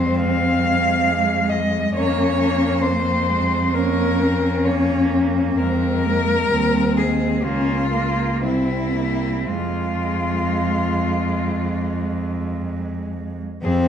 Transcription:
0.00 1.92 F2 medium
0.00 0.16 G#3 medium
0.00 1.08 C4 medium
0.00 0.17 C5 medium
0.16 1.93 G#3 medium
0.16 1.51 F5 loud
1.07 1.97 G#3 medium
1.49 1.95 D#5 medium
1.95 5.54 F2 medium
1.95 2.40 A#3 medium
1.95 2.86 C#4 medium
1.95 2.83 C#5 medium
2.41 2.87 A#3 medium
2.81 3.31 A#3 medium
2.81 3.77 C4 medium
2.81 3.76 C5 medium
3.30 3.74 G#3 medium
3.75 4.23 A#3 medium
3.75 4.21 C#4 medium
3.75 4.67 A#4 medium
4.20 4.67 C4 medium
4.20 5.58 C#4 medium
4.65 5.60 A#3 medium
4.65 5.12 C#5 medium
5.56 6.50 F2 medium
5.56 6.50 G#3 medium
5.56 6.06 C4 medium
5.56 6.98 A#4 loud
6.04 6.52 A#3 medium
6.50 7.45 D#2 medium
6.50 6.99 G3 medium
6.50 7.43 C4 medium
6.97 7.43 G#3 medium
6.97 7.45 G#4 medium
7.42 8.43 C#2 medium
7.42 7.91 A#3 medium
7.42 7.91 C#4 medium
7.42 8.42 F4 medium
7.91 8.42 A#3 medium
7.91 8.44 A#3 medium
8.41 9.49 C2 medium
8.41 8.94 C4 medium
8.41 9.48 E4 medium
8.93 9.45 A#3 medium
8.93 9.49 C4 medium
9.46 13.42 F2 medium
9.46 13.08 G#3 medium
9.46 13.43 G#3 medium
9.46 12.60 F4 medium
13.62 13.88 F2 medium
13.62 13.88 C4 loud
13.62 13.72 G#4 medium

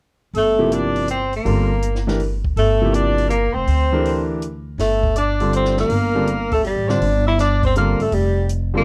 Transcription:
0.34 1.41 G1 medium
0.34 0.75 A3 medium
0.34 0.75 A4 medium
0.34 open hi-hat soft
0.58 1.06 C3 medium
0.58 1.06 F3 medium
0.58 1.06 A#3 medium
0.58 1.07 E4 medium
0.58 1.06 G4 medium
0.72 1.10 D4 medium
0.72 1.10 D5 medium
0.72 closed hi-hat soft
0.96 open hi-hat soft
1.08 1.32 C4 medium
1.08 1.33 C5 medium
1.08 closed hi-hat soft
1.33 2.05 A#3 medium
1.33 2.05 A#4 medium
1.33 open hi-hat soft
1.45 2.53 G1 medium
1.45 1.67 D3 medium
1.45 1.68 G3 medium
1.45 1.68 C4 medium
1.45 1.68 F4 soft
1.45 1.68 A4 medium
1.45 open hi-hat soft
1.82 closed hi-hat soft
1.95 snare soft
2.07 2.19 E3 medium
2.07 2.19 A3 medium
2.07 2.19 D4 medium
2.07 2.19 G4 medium
2.07 2.19 A#4 medium
2.07 snare soft
2.20 open hi-hat soft
2.44 kick soft
2.56 3.51 G1 medium
2.56 2.96 A3 medium
2.56 2.95 A4 medium
2.56 open hi-hat soft
2.82 3.29 C3 medium
2.82 3.29 F3 soft
2.82 3.29 A#3 medium
2.82 3.29 E4 soft
2.82 3.29 G4 medium
2.94 3.29 D4 medium
2.94 3.28 D5 medium
2.94 closed hi-hat soft
3.18 open hi-hat soft
3.28 3.56 A#3 medium
3.28 3.54 A#4 medium
3.28 closed hi-hat soft
3.53 3.66 F1 medium
3.53 4.29 C4 medium
3.53 4.29 C5 medium
3.67 4.75 D2 medium
3.67 open hi-hat soft
3.92 4.40 E3 medium
3.92 4.40 D4 medium
3.92 4.41 G4 medium
3.92 4.40 A4 medium
3.92 4.41 A#4 medium
4.05 open hi-hat soft
4.42 closed hi-hat soft
4.78 5.86 G1 medium
4.78 5.15 A3 medium
4.78 5.14 A4 medium
4.78 snare soft
4.78 open hi-hat soft
5.03 kick soft
5.16 5.52 D4 medium
5.16 5.51 D5 medium
5.16 closed hi-hat soft
5.40 5.88 D3 medium
5.40 5.88 G3 medium
5.40 5.88 C4 medium
5.40 5.89 F4 soft
5.40 5.89 A4 medium
5.40 open hi-hat soft
5.53 5.78 C4 medium
5.53 5.76 C5 medium
5.53 closed hi-hat soft
5.65 snare soft
5.77 6.49 A#3 medium
5.77 6.48 A#4 medium
5.77 snare soft
5.89 6.73 G1 medium
5.89 open hi-hat soft
6.15 6.27 D3 medium
6.15 6.27 G3 medium
6.15 6.27 C4 medium
6.15 6.27 F4 soft
6.15 6.27 A4 medium
6.27 closed hi-hat soft
6.52 6.65 A3 medium
6.52 6.63 A4 medium
6.52 kick soft
6.52 open hi-hat soft
6.64 6.91 G3 medium
6.64 6.90 G4 medium
6.64 open hi-hat soft
6.76 6.87 A1 medium
6.88 7.00 G#1 medium
6.88 7.01 D3 medium
6.88 7.01 G3 medium
6.88 7.01 C4 medium
6.88 7.27 D4 medium
6.88 7.01 F4 medium
6.88 7.01 C5 medium
6.88 7.26 D5 medium
6.88 snare soft
7.00 7.96 G1 medium
7.00 open hi-hat soft
7.26 7.39 E4 medium
7.26 7.38 E5 medium
7.39 7.62 D4 medium
7.39 7.63 D5 medium
7.39 snare soft
7.39 closed hi-hat soft
7.63 7.77 C4 medium
7.63 7.76 C5 medium
7.63 kick soft
7.63 open hi-hat soft
7.76 7.98 D3 medium
7.76 7.98 G3 soft
7.76 8.04 A#3 medium
7.76 7.98 C4 soft
7.76 7.99 F4 soft
7.76 7.99 A4 medium
7.76 8.03 A#4 medium
7.76 closed hi-hat soft
8.00 8.11 G1 medium
8.00 8.15 A3 medium
8.00 8.15 A4 medium
8.00 open hi-hat soft
8.12 8.84 F1 medium
8.12 8.51 G3 medium
8.12 8.51 G4 medium
8.12 open hi-hat soft
8.49 closed hi-hat soft
8.74 8.84 A#2 medium
8.74 8.84 D3 medium
8.74 8.84 G3 medium
8.74 8.84 A#3 medium
8.74 8.84 C4 medium
8.74 8.84 F4 medium
8.74 8.84 A4 medium

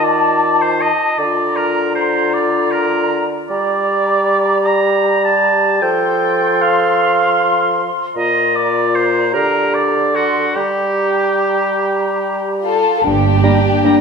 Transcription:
0.00 0.89 D#3 soft
0.00 0.89 F4 soft
0.00 0.63 D5 medium
0.00 1.15 A5 soft
0.61 0.83 C5 medium
0.81 1.20 D#5 medium
1.18 3.45 D3 medium
1.18 3.45 F4 soft
1.18 1.58 D5 medium
1.18 3.25 A#5 soft
1.56 1.95 A#4 medium
1.95 2.35 C5 medium
2.33 2.73 D5 medium
2.71 3.31 A#4 medium
3.49 5.79 G3 medium
3.49 5.84 G4 medium
3.49 4.68 D5 medium
3.49 5.79 A#5 soft
4.67 5.24 A#5 medium
5.25 5.83 A5 medium
5.82 7.85 F3 medium
5.82 7.89 A4 medium
5.82 6.63 G5 medium
5.82 8.16 C6 medium
6.62 7.97 F5 medium
8.15 9.36 A#2 medium
8.15 9.35 F4 soft
8.15 8.57 D#5 medium
8.15 9.91 A#5 medium
8.56 8.97 D5 medium
8.95 9.33 C5 medium
9.33 10.56 D3 medium
9.33 10.17 G4 soft
9.33 9.75 A#4 medium
9.74 10.17 D5 medium
10.15 10.57 F#4 medium
10.15 10.55 A4 soft
10.15 10.55 C6 soft
10.55 12.80 G3 soft
10.55 12.80 G4 soft
10.55 12.63 G4 medium
10.55 12.59 A#5 soft
12.63 13.01 F4 medium
12.63 12.95 A4 medium
12.63 13.01 A5 medium
12.97 13.04 A4 soft
13.04 13.37 G1 medium
13.04 13.37 G2 soft
13.04 14.01 A#3 soft
13.04 14.01 D4 medium
13.04 14.01 D4 soft
13.04 14.01 G4 medium
13.04 14.01 G5 medium
13.44 13.58 G3 soft
13.44 13.52 A#3 soft
13.44 13.52 D4 soft
13.44 13.59 D4 soft
13.44 13.58 A#5 soft
13.85 14.00 G3 soft
13.85 13.93 A#3 soft
13.85 13.93 D4 soft
13.85 14.00 D4 soft
13.85 14.00 A#5 soft

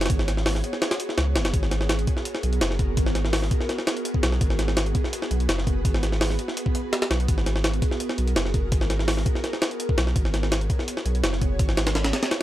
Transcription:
0.00 12.42 B3 medium
0.00 12.42 F#4 medium
0.00 12.42 G#4 medium
0.00 1.52 C#5 loud
0.00 snare medium
0.00 closed hi-hat medium
0.06 snare medium
0.06 closed hi-hat medium
0.10 0.62 G#1 loud
0.10 kick loud
0.10 closed hi-hat medium
0.19 snare medium
0.28 snare medium
0.28 closed hi-hat medium
0.37 snare soft
0.46 snare loud
0.46 open hi-hat medium
0.55 snare soft
0.64 closed hi-hat medium
0.73 snare soft
0.82 snare loud
0.82 closed hi-hat medium
0.91 snare loud
0.91 closed hi-hat medium
1.00 closed hi-hat medium
1.09 snare soft
1.18 1.37 C#2 medium
1.18 snare loud
1.18 closed hi-hat medium
1.36 1.52 F#1 medium
1.36 snare loud
1.36 closed hi-hat medium
1.45 snare loud
1.45 closed hi-hat medium
1.54 2.06 G#1 loud
1.54 4.40 A#4 loud
1.54 kick loud
1.54 closed hi-hat medium
1.63 snare soft
1.71 snare medium
1.71 closed hi-hat medium
1.81 snare medium
1.89 snare loud
1.89 closed hi-hat medium
1.99 closed hi-hat soft
2.07 kick loud
2.07 closed hi-hat medium
2.17 snare soft
2.25 closed hi-hat medium
2.35 snare medium
2.43 2.60 B1 medium
2.43 closed hi-hat medium
2.53 closed hi-hat soft
2.61 2.96 F#1 loud
2.61 snare loud
2.61 closed hi-hat medium
2.71 snare soft
2.79 kick loud
2.79 closed hi-hat medium
2.97 3.50 G#1 loud
2.97 kick loud
2.97 closed hi-hat medium
3.06 snare medium
3.15 snare medium
3.15 closed hi-hat medium
3.25 snare soft
3.33 snare loud
3.33 open hi-hat medium
3.42 snare soft
3.51 kick loud
3.51 closed hi-hat medium
3.60 snare soft
3.69 snare medium
3.69 closed hi-hat medium
3.79 snare soft
3.87 snare loud
3.87 closed hi-hat medium
3.97 closed hi-hat soft
4.05 closed hi-hat medium
4.14 kick loud
4.23 4.39 B1 loud
4.23 snare loud
4.23 closed hi-hat medium
4.32 snare soft
4.41 4.94 G#1 loud
4.41 7.27 B4 medium
4.41 kick loud
4.41 closed hi-hat medium
4.50 snare soft
4.59 snare medium
4.59 closed hi-hat medium
4.68 snare medium
4.77 snare loud
4.77 closed hi-hat medium
4.86 closed hi-hat soft
4.95 kick loud
4.95 closed hi-hat medium
5.04 snare soft
5.13 closed hi-hat medium
5.22 snare medium
5.31 5.47 B1 medium
5.31 closed hi-hat medium
5.40 closed hi-hat soft
5.49 5.83 F#1 loud
5.49 snare loud
5.49 closed hi-hat medium
5.58 snare soft
5.67 kick loud
5.67 closed hi-hat medium
5.85 6.37 G#1 loud
5.85 kick loud
5.85 closed hi-hat medium
5.94 snare medium
6.03 snare medium
6.03 closed hi-hat medium
6.12 snare soft
6.21 snare loud
6.21 open hi-hat medium
6.30 snare soft
6.39 closed hi-hat medium
6.48 snare soft
6.57 closed hi-hat medium
6.66 kick loud
6.75 closed hi-hat medium
6.93 snare loud
6.93 closed hi-hat medium
7.02 snare loud
7.02 closed hi-hat medium
7.10 7.27 B1 medium
7.10 snare loud
7.10 closed hi-hat medium
7.20 closed hi-hat soft
7.28 7.81 G#1 loud
7.28 10.15 A#4 medium
7.28 kick loud
7.28 closed hi-hat medium
7.38 snare soft
7.46 snare medium
7.46 closed hi-hat medium
7.56 snare medium
7.64 snare loud
7.64 closed hi-hat medium
7.74 closed hi-hat soft
7.82 kick loud
7.82 closed hi-hat medium
7.91 snare soft
8.00 closed hi-hat medium
8.09 snare medium
8.18 8.34 B1 medium
8.18 closed hi-hat medium
8.27 closed hi-hat soft
8.36 8.71 F#1 loud
8.36 snare loud
8.36 closed hi-hat medium
8.45 snare soft
8.54 kick loud
8.54 closed hi-hat medium
8.72 9.25 G#1 loud
8.72 kick loud
8.72 closed hi-hat medium
8.81 snare medium
8.90 snare medium
8.90 closed hi-hat medium
8.99 snare soft
9.08 snare loud
9.08 open hi-hat medium
9.17 snare soft
9.26 kick loud
9.26 closed hi-hat medium
9.35 snare soft
9.44 snare soft
9.44 closed hi-hat medium
9.53 snare soft
9.62 snare loud
9.62 closed hi-hat medium
9.71 closed hi-hat soft
9.80 closed hi-hat medium
9.89 kick loud
9.98 10.14 B1 medium
9.98 snare loud
9.98 closed hi-hat medium
10.07 snare soft
10.16 10.68 G#1 loud
10.16 12.42 C#5 medium
10.16 kick loud
10.16 closed hi-hat medium
10.25 snare soft
10.34 snare medium
10.34 closed hi-hat medium
10.43 snare medium
10.52 snare loud
10.52 closed hi-hat medium
10.61 closed hi-hat soft
10.70 kick loud
10.70 closed hi-hat medium
10.79 snare soft
10.88 closed hi-hat medium
10.97 snare medium
11.05 11.22 B1 medium
11.05 closed hi-hat medium
11.15 closed hi-hat soft
11.23 11.58 F#1 loud
11.23 snare loud
11.23 closed hi-hat medium
11.33 snare soft
11.41 kick loud
11.41 closed hi-hat medium
11.59 12.12 G#1 loud
11.59 kick loud
11.59 closed hi-hat medium
11.69 snare medium
11.77 snare loud
11.77 closed hi-hat medium
11.87 snare loud
11.87 closed hi-hat medium
11.95 snare loud
11.95 closed hi-hat medium
12.04 snare loud
12.04 closed hi-hat medium
12.13 snare loud
12.13 closed hi-hat medium
12.23 snare loud
12.23 closed hi-hat medium
12.31 snare loud
12.31 closed hi-hat medium

